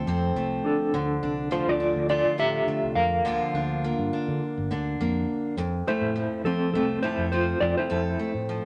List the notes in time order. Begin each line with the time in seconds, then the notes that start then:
Already playing: F2 F3 A3 A4
0.06 F2 C3 C4
0.35 C2 A3
0.65 D4 A4
0.93 D2 D3
1.22 C2 D4
1.51 F3 A3 F4 C5
1.68 D2 F4 D5
1.80 D4
1.96 D2
2.09 F4 D5
2.25 D3
2.38 A2 D4 G4 E5
2.67 D3 A3
2.83 C2
2.95 F2 A#4 F5
3.24 D2 D3 F3 A#3 D4 F4
3.54 D2 D4
3.84 A#3
3.98 G2
4.13 D4
4.28 D3
4.57 G1
4.71 D2 D3 D4
5.00 F2 A#3
5.57 F2, muted steel-string acoustic guitar stroke
5.88 A3 E4 C5
6.01 A2
6.16 F3
6.44 F3 C4 A4
6.73 C2 A3 C4 A4
7.03 C3 E4 A4 C5
7.17 F2
7.32 C4 F4 C5
7.60 F2 F4 D5
7.77 E4 C5
7.90 F2 A4
8.19 A3
8.34 A2
8.49 F3